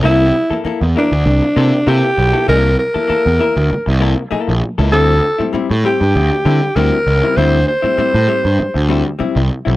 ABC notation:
X:1
M:4/4
L:1/16
Q:1/4=98
K:C
V:1 name="Alto saxophone"
E4 z2 D6 G4 | _B2 B8 z6 | A4 z2 G6 _B4 | c2 c8 z6 |]
V:2 name="Hollow-body jazz guitar"
[_B,EA] z2 [B,EA] [B,EA] z [B,E_B] z3 [B,EA] z [B,EA] z2 [B,EA] | [_B,EA] z2 [B,EA] [B,EA] z [B,E_B] z3 [B,EA] z [B,EA] z2 [B,EA] | [G,CE] z2 [G,CE] [G,CE] z [G,CG] z3 [G,CE] z [G,CE] z2 [G,CE] | [G,CE] z2 [G,CE] [G,CE] z [G,CG] z3 [G,CE] z [G,CE] z2 [G,CE] |]
V:3 name="Picked electric bass" clef=bass
C,,2 z3 E,, z D,, C,, z C, z C, z B,,, z | C,,2 z3 E,, z D,, z C,,2 z2 _B,,, z ^C,, | D,,2 z3 A,, z G,, D,, z D, z D,, z ^C,, z | D,,2 z3 A,, z G,, z D,,2 z2 C,, z B,,, |]